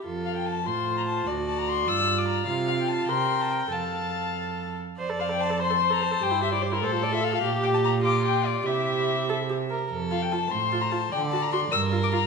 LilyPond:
<<
  \new Staff \with { instrumentName = "Violin" } { \time 6/8 \key f \major \tempo 4. = 98 r8 f''16 g''16 a''8 c'''8. bes''16 a''8 | r8 a''16 bes''16 c'''8 e'''8. d'''16 bes''8 | r8 f''16 g''16 a''8 c'''8. a''16 g''8 | f''2~ f''8 r8 |
r8 f''16 g''16 a''8 c'''8. bes''16 a''8 | g''8 e''16 d''16 c''16 bes'16 c''8 d''16 e''16 f''16 f''16 | r8 g''16 a''16 bes''8 d'''8 g''8 d''8 | e''2~ e''8 r8 |
r8 f''16 g''16 a''8 c'''8. bes''16 a''8 | g''8 a''16 bes''16 c'''8 e'''8. d'''16 bes''8 | }
  \new Staff \with { instrumentName = "Violin" } { \time 6/8 \key f \major a'4. c''4. | d''2. | f''4. g''4. | a''2~ a''16 r8. |
d''4. c''4.~ | c''4. a'4. | g'4. f'4. | e'2~ e'16 r8. |
a'4. c''4. | d''4. bes'4. | }
  \new Staff \with { instrumentName = "Viola" } { \time 6/8 \key f \major f'4. f'4. | fis'4. f'4. | f'4. bes'4. | a'2~ a'8 r8 |
c''16 a'16 c''16 a'16 c''16 a'16 c''16 a'16 c''16 a'16 c''16 a'16 | g'16 e'16 g'16 e'16 g'16 e'16 a'16 f'16 a'16 f'16 a'16 f'16 | g'4. g'4. | g'4. a'8 g'8 bes'8 |
r8 f'8 f'8 r8 f'8 f'8 | r8 fis'8 fis'8 r8 f'8 f'8 | }
  \new Staff \with { instrumentName = "Cello" } { \clef bass \time 6/8 \key f \major f,4. a,4. | d,4. g,4. | c4. c4. | f,2~ f,8 r8 |
f,2. | g,4. a,4. | bes,2. | c2~ c8 r8 |
f,4. a,4. | d4. g,4. | }
>>